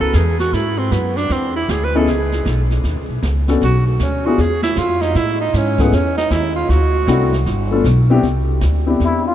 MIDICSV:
0, 0, Header, 1, 6, 480
1, 0, Start_track
1, 0, Tempo, 385109
1, 653, Time_signature, 4, 2, 24, 8
1, 11649, End_track
2, 0, Start_track
2, 0, Title_t, "Muted trumpet"
2, 0, Program_c, 0, 59
2, 11266, Note_on_c, 0, 64, 74
2, 11529, Note_off_c, 0, 64, 0
2, 11555, Note_on_c, 0, 65, 81
2, 11649, Note_off_c, 0, 65, 0
2, 11649, End_track
3, 0, Start_track
3, 0, Title_t, "Tenor saxophone"
3, 0, Program_c, 1, 66
3, 4, Note_on_c, 1, 69, 101
3, 187, Note_on_c, 1, 68, 91
3, 205, Note_off_c, 1, 69, 0
3, 491, Note_off_c, 1, 68, 0
3, 497, Note_on_c, 1, 66, 96
3, 674, Note_on_c, 1, 64, 87
3, 693, Note_off_c, 1, 66, 0
3, 974, Note_on_c, 1, 60, 84
3, 993, Note_off_c, 1, 64, 0
3, 1150, Note_on_c, 1, 59, 88
3, 1169, Note_off_c, 1, 60, 0
3, 1458, Note_on_c, 1, 62, 103
3, 1476, Note_off_c, 1, 59, 0
3, 1645, Note_on_c, 1, 60, 88
3, 1664, Note_off_c, 1, 62, 0
3, 1933, Note_off_c, 1, 60, 0
3, 1941, Note_on_c, 1, 64, 93
3, 2128, Note_on_c, 1, 68, 89
3, 2147, Note_off_c, 1, 64, 0
3, 2294, Note_on_c, 1, 71, 102
3, 2312, Note_off_c, 1, 68, 0
3, 2452, Note_on_c, 1, 69, 88
3, 2471, Note_off_c, 1, 71, 0
3, 2606, Note_on_c, 1, 68, 97
3, 2625, Note_off_c, 1, 69, 0
3, 3071, Note_off_c, 1, 68, 0
3, 4534, Note_on_c, 1, 66, 87
3, 4806, Note_off_c, 1, 66, 0
3, 4821, Note_on_c, 1, 57, 53
3, 5015, Note_on_c, 1, 61, 84
3, 5021, Note_off_c, 1, 57, 0
3, 5307, Note_on_c, 1, 66, 90
3, 5326, Note_off_c, 1, 61, 0
3, 5497, Note_on_c, 1, 68, 93
3, 5516, Note_off_c, 1, 66, 0
3, 5765, Note_off_c, 1, 68, 0
3, 5773, Note_on_c, 1, 64, 99
3, 5964, Note_on_c, 1, 65, 99
3, 5982, Note_off_c, 1, 64, 0
3, 6253, Note_on_c, 1, 63, 98
3, 6272, Note_off_c, 1, 65, 0
3, 6445, Note_on_c, 1, 64, 109
3, 6463, Note_off_c, 1, 63, 0
3, 6733, Note_off_c, 1, 64, 0
3, 6741, Note_on_c, 1, 63, 92
3, 6938, Note_on_c, 1, 61, 91
3, 6957, Note_off_c, 1, 63, 0
3, 7243, Note_on_c, 1, 59, 97
3, 7262, Note_off_c, 1, 61, 0
3, 7410, Note_on_c, 1, 61, 91
3, 7429, Note_off_c, 1, 59, 0
3, 7685, Note_off_c, 1, 61, 0
3, 7693, Note_on_c, 1, 63, 103
3, 7879, Note_on_c, 1, 64, 95
3, 7898, Note_off_c, 1, 63, 0
3, 8163, Note_off_c, 1, 64, 0
3, 8171, Note_on_c, 1, 65, 94
3, 8365, Note_on_c, 1, 66, 100
3, 8384, Note_off_c, 1, 65, 0
3, 9308, Note_off_c, 1, 66, 0
3, 11649, End_track
4, 0, Start_track
4, 0, Title_t, "Grand piano"
4, 0, Program_c, 2, 0
4, 0, Note_on_c, 2, 59, 73
4, 0, Note_on_c, 2, 61, 64
4, 0, Note_on_c, 2, 64, 65
4, 0, Note_on_c, 2, 66, 64
4, 0, Note_on_c, 2, 69, 79
4, 136, Note_off_c, 2, 61, 0
4, 137, Note_off_c, 2, 59, 0
4, 140, Note_off_c, 2, 66, 0
4, 141, Note_off_c, 2, 64, 0
4, 144, Note_off_c, 2, 69, 0
4, 2425, Note_on_c, 2, 59, 81
4, 2429, Note_on_c, 2, 61, 74
4, 2432, Note_on_c, 2, 64, 75
4, 2435, Note_on_c, 2, 63, 69
4, 2440, Note_on_c, 2, 68, 87
4, 2568, Note_off_c, 2, 59, 0
4, 2570, Note_off_c, 2, 61, 0
4, 2572, Note_off_c, 2, 64, 0
4, 2573, Note_off_c, 2, 63, 0
4, 2576, Note_off_c, 2, 68, 0
4, 4337, Note_on_c, 2, 59, 70
4, 4342, Note_on_c, 2, 61, 65
4, 4344, Note_on_c, 2, 66, 67
4, 4348, Note_on_c, 2, 62, 63
4, 4349, Note_on_c, 2, 69, 80
4, 4485, Note_off_c, 2, 59, 0
4, 4487, Note_off_c, 2, 61, 0
4, 4488, Note_off_c, 2, 66, 0
4, 4490, Note_off_c, 2, 62, 0
4, 4491, Note_off_c, 2, 69, 0
4, 5308, Note_on_c, 2, 62, 67
4, 5310, Note_on_c, 2, 59, 71
4, 5314, Note_on_c, 2, 65, 66
4, 5317, Note_on_c, 2, 64, 68
4, 5323, Note_on_c, 2, 68, 83
4, 5450, Note_off_c, 2, 62, 0
4, 5451, Note_off_c, 2, 59, 0
4, 5453, Note_off_c, 2, 65, 0
4, 5454, Note_off_c, 2, 64, 0
4, 5458, Note_off_c, 2, 68, 0
4, 7224, Note_on_c, 2, 57, 74
4, 7227, Note_on_c, 2, 59, 68
4, 7229, Note_on_c, 2, 61, 66
4, 7233, Note_on_c, 2, 64, 66
4, 7236, Note_on_c, 2, 68, 79
4, 7367, Note_off_c, 2, 57, 0
4, 7369, Note_off_c, 2, 59, 0
4, 7370, Note_off_c, 2, 61, 0
4, 7372, Note_off_c, 2, 64, 0
4, 7373, Note_off_c, 2, 68, 0
4, 8822, Note_on_c, 2, 57, 76
4, 8823, Note_on_c, 2, 64, 72
4, 8824, Note_on_c, 2, 62, 65
4, 8826, Note_on_c, 2, 60, 67
4, 8829, Note_on_c, 2, 66, 84
4, 9097, Note_off_c, 2, 57, 0
4, 9098, Note_off_c, 2, 64, 0
4, 9099, Note_off_c, 2, 60, 0
4, 9099, Note_off_c, 2, 62, 0
4, 9101, Note_off_c, 2, 66, 0
4, 9610, Note_on_c, 2, 57, 75
4, 9618, Note_on_c, 2, 59, 70
4, 9621, Note_on_c, 2, 62, 63
4, 9622, Note_on_c, 2, 65, 70
4, 9625, Note_on_c, 2, 69, 82
4, 9759, Note_off_c, 2, 57, 0
4, 9763, Note_off_c, 2, 59, 0
4, 9764, Note_off_c, 2, 62, 0
4, 9765, Note_off_c, 2, 65, 0
4, 9767, Note_off_c, 2, 69, 0
4, 10096, Note_on_c, 2, 59, 86
4, 10098, Note_on_c, 2, 62, 79
4, 10101, Note_on_c, 2, 60, 81
4, 10109, Note_on_c, 2, 64, 82
4, 10111, Note_on_c, 2, 67, 97
4, 10242, Note_off_c, 2, 59, 0
4, 10243, Note_off_c, 2, 62, 0
4, 10244, Note_off_c, 2, 60, 0
4, 10248, Note_off_c, 2, 64, 0
4, 10249, Note_off_c, 2, 67, 0
4, 11049, Note_on_c, 2, 60, 64
4, 11050, Note_on_c, 2, 59, 69
4, 11055, Note_on_c, 2, 62, 68
4, 11055, Note_on_c, 2, 67, 77
4, 11056, Note_on_c, 2, 64, 66
4, 11649, Note_off_c, 2, 59, 0
4, 11649, Note_off_c, 2, 60, 0
4, 11649, Note_off_c, 2, 62, 0
4, 11649, Note_off_c, 2, 64, 0
4, 11649, Note_off_c, 2, 67, 0
4, 11649, End_track
5, 0, Start_track
5, 0, Title_t, "Upright bass"
5, 0, Program_c, 3, 32
5, 1, Note_on_c, 3, 37, 65
5, 155, Note_off_c, 3, 37, 0
5, 170, Note_on_c, 3, 40, 99
5, 637, Note_off_c, 3, 40, 0
5, 659, Note_on_c, 3, 44, 78
5, 1123, Note_off_c, 3, 44, 0
5, 1134, Note_on_c, 3, 42, 90
5, 1601, Note_off_c, 3, 42, 0
5, 1616, Note_on_c, 3, 40, 85
5, 2081, Note_off_c, 3, 40, 0
5, 2102, Note_on_c, 3, 38, 93
5, 2565, Note_off_c, 3, 38, 0
5, 2577, Note_on_c, 3, 37, 84
5, 3042, Note_off_c, 3, 37, 0
5, 3062, Note_on_c, 3, 35, 91
5, 3525, Note_off_c, 3, 35, 0
5, 3538, Note_on_c, 3, 39, 81
5, 3694, Note_off_c, 3, 39, 0
5, 3694, Note_on_c, 3, 37, 55
5, 3841, Note_off_c, 3, 37, 0
5, 3849, Note_on_c, 3, 35, 65
5, 4001, Note_off_c, 3, 35, 0
5, 4021, Note_on_c, 3, 37, 97
5, 4484, Note_off_c, 3, 37, 0
5, 4506, Note_on_c, 3, 35, 89
5, 4967, Note_off_c, 3, 35, 0
5, 4980, Note_on_c, 3, 38, 85
5, 5444, Note_off_c, 3, 38, 0
5, 5461, Note_on_c, 3, 40, 88
5, 5924, Note_off_c, 3, 40, 0
5, 5938, Note_on_c, 3, 41, 99
5, 6403, Note_off_c, 3, 41, 0
5, 6417, Note_on_c, 3, 45, 83
5, 6882, Note_off_c, 3, 45, 0
5, 6899, Note_on_c, 3, 44, 95
5, 7363, Note_off_c, 3, 44, 0
5, 7379, Note_on_c, 3, 40, 89
5, 7842, Note_off_c, 3, 40, 0
5, 7860, Note_on_c, 3, 39, 99
5, 8323, Note_off_c, 3, 39, 0
5, 8338, Note_on_c, 3, 38, 88
5, 8801, Note_off_c, 3, 38, 0
5, 8812, Note_on_c, 3, 36, 98
5, 9278, Note_off_c, 3, 36, 0
5, 9301, Note_on_c, 3, 31, 89
5, 9762, Note_off_c, 3, 31, 0
5, 9772, Note_on_c, 3, 35, 98
5, 10237, Note_off_c, 3, 35, 0
5, 10259, Note_on_c, 3, 36, 81
5, 10721, Note_off_c, 3, 36, 0
5, 10736, Note_on_c, 3, 38, 88
5, 11199, Note_off_c, 3, 38, 0
5, 11219, Note_on_c, 3, 40, 83
5, 11649, Note_off_c, 3, 40, 0
5, 11649, End_track
6, 0, Start_track
6, 0, Title_t, "Drums"
6, 164, Note_on_c, 9, 44, 68
6, 166, Note_on_c, 9, 38, 64
6, 170, Note_on_c, 9, 36, 23
6, 289, Note_off_c, 9, 44, 0
6, 290, Note_off_c, 9, 38, 0
6, 295, Note_off_c, 9, 36, 0
6, 485, Note_on_c, 9, 38, 42
6, 610, Note_off_c, 9, 38, 0
6, 655, Note_on_c, 9, 36, 25
6, 661, Note_on_c, 9, 25, 49
6, 661, Note_on_c, 9, 38, 45
6, 779, Note_off_c, 9, 36, 0
6, 786, Note_off_c, 9, 38, 0
6, 1137, Note_on_c, 9, 36, 23
6, 1143, Note_on_c, 9, 44, 59
6, 1144, Note_on_c, 9, 38, 60
6, 1261, Note_off_c, 9, 36, 0
6, 1267, Note_off_c, 9, 44, 0
6, 1268, Note_off_c, 9, 38, 0
6, 1452, Note_on_c, 9, 38, 38
6, 1576, Note_off_c, 9, 38, 0
6, 1615, Note_off_c, 9, 25, 0
6, 1615, Note_on_c, 9, 25, 52
6, 1615, Note_on_c, 9, 38, 46
6, 1616, Note_on_c, 9, 36, 22
6, 1740, Note_off_c, 9, 38, 0
6, 1741, Note_off_c, 9, 36, 0
6, 2101, Note_on_c, 9, 36, 20
6, 2105, Note_on_c, 9, 44, 69
6, 2107, Note_on_c, 9, 38, 65
6, 2225, Note_off_c, 9, 36, 0
6, 2230, Note_off_c, 9, 44, 0
6, 2231, Note_off_c, 9, 38, 0
6, 2579, Note_off_c, 9, 25, 0
6, 2579, Note_on_c, 9, 25, 56
6, 2579, Note_on_c, 9, 38, 47
6, 2580, Note_on_c, 9, 36, 20
6, 2704, Note_off_c, 9, 38, 0
6, 2705, Note_off_c, 9, 36, 0
6, 2892, Note_on_c, 9, 38, 52
6, 3016, Note_off_c, 9, 38, 0
6, 3061, Note_on_c, 9, 36, 22
6, 3061, Note_on_c, 9, 44, 54
6, 3063, Note_on_c, 9, 38, 59
6, 3185, Note_off_c, 9, 36, 0
6, 3186, Note_off_c, 9, 44, 0
6, 3187, Note_off_c, 9, 38, 0
6, 3370, Note_on_c, 9, 38, 38
6, 3495, Note_off_c, 9, 38, 0
6, 3534, Note_off_c, 9, 25, 0
6, 3534, Note_on_c, 9, 25, 52
6, 3534, Note_on_c, 9, 38, 46
6, 3539, Note_on_c, 9, 36, 23
6, 3658, Note_off_c, 9, 38, 0
6, 3664, Note_off_c, 9, 36, 0
6, 4021, Note_on_c, 9, 36, 29
6, 4021, Note_on_c, 9, 44, 57
6, 4022, Note_on_c, 9, 38, 64
6, 4146, Note_off_c, 9, 36, 0
6, 4146, Note_off_c, 9, 44, 0
6, 4147, Note_off_c, 9, 38, 0
6, 4333, Note_on_c, 9, 38, 40
6, 4458, Note_off_c, 9, 38, 0
6, 4502, Note_on_c, 9, 36, 21
6, 4503, Note_off_c, 9, 25, 0
6, 4503, Note_on_c, 9, 25, 58
6, 4503, Note_on_c, 9, 38, 49
6, 4626, Note_off_c, 9, 36, 0
6, 4628, Note_off_c, 9, 38, 0
6, 4980, Note_on_c, 9, 44, 59
6, 4981, Note_on_c, 9, 36, 22
6, 4982, Note_on_c, 9, 38, 67
6, 5105, Note_off_c, 9, 44, 0
6, 5106, Note_off_c, 9, 36, 0
6, 5106, Note_off_c, 9, 38, 0
6, 5461, Note_on_c, 9, 36, 24
6, 5463, Note_off_c, 9, 25, 0
6, 5463, Note_on_c, 9, 25, 48
6, 5463, Note_on_c, 9, 38, 47
6, 5585, Note_off_c, 9, 36, 0
6, 5587, Note_off_c, 9, 38, 0
6, 5764, Note_on_c, 9, 38, 63
6, 5889, Note_off_c, 9, 38, 0
6, 5936, Note_on_c, 9, 44, 58
6, 5938, Note_on_c, 9, 38, 67
6, 5940, Note_on_c, 9, 36, 20
6, 6061, Note_off_c, 9, 44, 0
6, 6062, Note_off_c, 9, 38, 0
6, 6065, Note_off_c, 9, 36, 0
6, 6247, Note_on_c, 9, 38, 44
6, 6372, Note_off_c, 9, 38, 0
6, 6417, Note_off_c, 9, 25, 0
6, 6417, Note_on_c, 9, 25, 55
6, 6417, Note_on_c, 9, 38, 51
6, 6419, Note_on_c, 9, 36, 22
6, 6542, Note_off_c, 9, 38, 0
6, 6543, Note_off_c, 9, 36, 0
6, 6902, Note_on_c, 9, 36, 23
6, 6903, Note_on_c, 9, 44, 60
6, 6904, Note_on_c, 9, 38, 62
6, 7026, Note_off_c, 9, 36, 0
6, 7027, Note_off_c, 9, 44, 0
6, 7028, Note_off_c, 9, 38, 0
6, 7204, Note_on_c, 9, 38, 40
6, 7209, Note_on_c, 9, 36, 50
6, 7328, Note_off_c, 9, 38, 0
6, 7334, Note_off_c, 9, 36, 0
6, 7379, Note_off_c, 9, 25, 0
6, 7379, Note_on_c, 9, 25, 53
6, 7379, Note_on_c, 9, 38, 48
6, 7380, Note_on_c, 9, 36, 25
6, 7504, Note_off_c, 9, 38, 0
6, 7505, Note_off_c, 9, 36, 0
6, 7696, Note_on_c, 9, 38, 45
6, 7820, Note_off_c, 9, 38, 0
6, 7861, Note_on_c, 9, 36, 22
6, 7861, Note_on_c, 9, 44, 63
6, 7862, Note_on_c, 9, 38, 71
6, 7986, Note_off_c, 9, 36, 0
6, 7986, Note_off_c, 9, 44, 0
6, 7987, Note_off_c, 9, 38, 0
6, 8338, Note_on_c, 9, 36, 24
6, 8343, Note_off_c, 9, 25, 0
6, 8343, Note_on_c, 9, 25, 54
6, 8343, Note_on_c, 9, 38, 50
6, 8463, Note_off_c, 9, 36, 0
6, 8468, Note_off_c, 9, 38, 0
6, 8816, Note_on_c, 9, 36, 28
6, 8816, Note_on_c, 9, 44, 57
6, 8818, Note_on_c, 9, 38, 65
6, 8941, Note_off_c, 9, 36, 0
6, 8941, Note_off_c, 9, 44, 0
6, 8942, Note_off_c, 9, 38, 0
6, 9133, Note_on_c, 9, 38, 40
6, 9258, Note_off_c, 9, 38, 0
6, 9298, Note_off_c, 9, 25, 0
6, 9298, Note_on_c, 9, 25, 54
6, 9298, Note_on_c, 9, 36, 27
6, 9298, Note_on_c, 9, 38, 48
6, 9422, Note_off_c, 9, 36, 0
6, 9423, Note_off_c, 9, 38, 0
6, 9778, Note_on_c, 9, 36, 26
6, 9780, Note_on_c, 9, 44, 55
6, 9781, Note_on_c, 9, 38, 74
6, 9903, Note_off_c, 9, 36, 0
6, 9905, Note_off_c, 9, 44, 0
6, 9906, Note_off_c, 9, 38, 0
6, 10257, Note_off_c, 9, 25, 0
6, 10257, Note_on_c, 9, 25, 53
6, 10257, Note_on_c, 9, 38, 46
6, 10258, Note_on_c, 9, 36, 27
6, 10382, Note_off_c, 9, 38, 0
6, 10383, Note_off_c, 9, 36, 0
6, 10730, Note_on_c, 9, 44, 51
6, 10731, Note_on_c, 9, 38, 60
6, 10736, Note_on_c, 9, 36, 26
6, 10854, Note_off_c, 9, 44, 0
6, 10855, Note_off_c, 9, 38, 0
6, 10861, Note_off_c, 9, 36, 0
6, 11218, Note_off_c, 9, 25, 0
6, 11218, Note_on_c, 9, 25, 43
6, 11218, Note_on_c, 9, 36, 20
6, 11218, Note_on_c, 9, 38, 46
6, 11342, Note_off_c, 9, 36, 0
6, 11342, Note_off_c, 9, 38, 0
6, 11649, Note_off_c, 9, 25, 0
6, 11649, End_track
0, 0, End_of_file